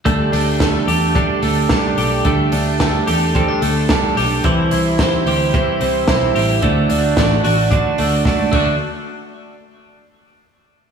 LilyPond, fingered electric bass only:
\new Staff \with { instrumentName = "Fingered electric bass" } { \clef bass \time 4/4 \key d \mixolydian \tempo 4 = 110 d,8 d,4 e,8. r16 d,8 c,8 b,,8 | d,8 d,4 e,8. r16 d,8 c,8 b,,8 | c,8 c,4 d,8. r16 c,8 b,,8 a,,8 | d,8 d,8 a,,8 a,,8. r16 d,8 c,8 d,8 |
r1 | }